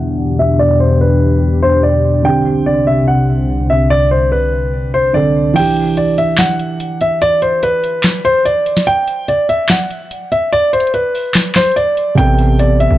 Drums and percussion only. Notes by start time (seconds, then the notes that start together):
5.56 closed hi-hat, crash
5.76 closed hi-hat
5.97 closed hi-hat
6.18 closed hi-hat
6.38 snare, clap, closed hi-hat
6.59 closed hi-hat
6.80 closed hi-hat
7.01 closed hi-hat
7.21 closed hi-hat
7.42 closed hi-hat
7.63 closed hi-hat
7.84 closed hi-hat
8.04 snare, clap, closed hi-hat
8.25 closed hi-hat
8.46 closed hi-hat
8.66 closed hi-hat
8.77 snare
8.87 closed hi-hat
9.08 closed hi-hat
9.28 closed hi-hat
9.49 closed hi-hat
9.69 snare, clap, closed hi-hat
9.91 closed hi-hat
10.11 closed hi-hat
10.32 closed hi-hat
10.53 closed hi-hat
10.73 closed hi-hat
10.80 closed hi-hat
10.87 closed hi-hat
10.94 closed hi-hat
11.15 open hi-hat
11.35 snare, clap, closed hi-hat
11.55 snare, clap, closed hi-hat
11.61 closed hi-hat
11.66 closed hi-hat
11.71 closed hi-hat
11.77 closed hi-hat
11.97 closed hi-hat
12.18 closed hi-hat
12.39 closed hi-hat
12.59 closed hi-hat
12.80 closed hi-hat